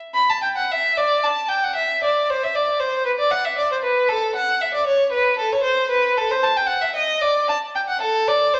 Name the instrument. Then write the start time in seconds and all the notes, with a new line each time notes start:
violin
0.14 B5
0.30 A5
0.42 G5
0.57 F#5
0.71 E5
0.97 D5
1.24 A5
1.49 G5
1.64 F#5
1.75 E5
2.04 D5
2.30 C5
2.44 E5
2.55 D5
2.80 C5
3.05 B4
3.19 D5
3.31 F#5
3.45 E5
3.58 D5
3.72 C5
3.82 B4
4.09 A4
4.36 F#5
4.61 E5
4.74 D5
4.87 C#5
5.12 B4
5.39 A4
5.52 C#5
5.63 C5
5.90 B4
6.17 A4
6.31 C5
6.43 A5
6.57 G5
6.67 F#5
6.81 E5
6.95 D#5
7.21 D5
7.49 A5
7.75 G5
7.88 F#5
8.01 A4
8.28 D5
8.54 C5